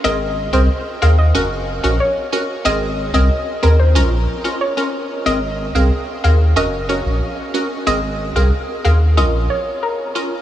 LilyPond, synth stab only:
\new Staff \with { instrumentName = "Synth stab" } { \time 4/4 \key aes \mixolydian \tempo 4 = 92 <c' aes' bes'>8. <c' aes' bes'>16 r8 <c' aes' bes'>16 r16 <des' ges' bes'>16 r8 <des' ges' bes'>16 r8 <des' ges' bes'>16 r16 | <c' aes' bes'>8. <c' aes' bes'>16 r8 <c' aes' bes'>16 r16 <des' f' bes'>16 r8 <des' f' bes'>16 r16 <des' f' bes'>16 r8 | <c' aes' bes'>16 r8 <c' aes' bes'>16 r8 <c' aes' bes'>16 r16 <des' ges' bes'>8 <des' ges' bes'>16 r8. <des' ges' bes'>16 r16 | <c' aes' bes'>16 r8 <c' aes' bes'>16 r8 <c' aes' bes'>16 r16 <des' f' bes'>4. <des' f' bes'>16 r16 | }